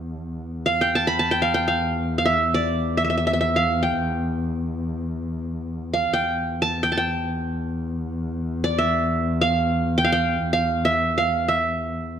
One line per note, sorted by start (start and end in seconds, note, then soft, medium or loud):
0.00 6.15 E2 medium
0.66 1.42 F5 medium
0.81 1.31 G5 medium
0.95 1.19 A5 medium
1.07 1.79 B5 medium
1.19 1.97 A5 medium
1.31 1.54 G5 medium
1.42 1.67 F5 medium
1.54 2.37 G5 medium
1.68 2.18 F5 medium
2.18 2.32 F5 medium
2.26 2.97 E5 medium
2.54 3.53 D5 medium
2.97 3.04 E5 medium
3.05 3.09 E5 soft
3.10 3.17 E5 medium
3.18 3.26 E5 medium
3.27 3.33 E5 medium
3.33 3.40 E5 medium
3.41 3.62 E5 medium
3.56 4.45 F5 medium
3.83 4.98 G5 medium
5.94 6.83 F5 medium
6.13 12.20 E2 medium
6.13 6.83 G5 medium
6.62 6.91 A5 medium
6.83 6.97 G5 medium
6.92 7.69 A5 medium
6.97 7.85 G5 medium
8.64 9.63 D5 medium
8.78 9.47 E5 medium
9.41 10.04 F5 medium
9.98 10.12 G5 medium
10.04 10.53 F5 medium
10.12 10.95 G5 medium
10.53 10.91 F5 medium
10.85 11.24 E5 medium
11.18 11.54 F5 medium
11.48 12.20 E5 medium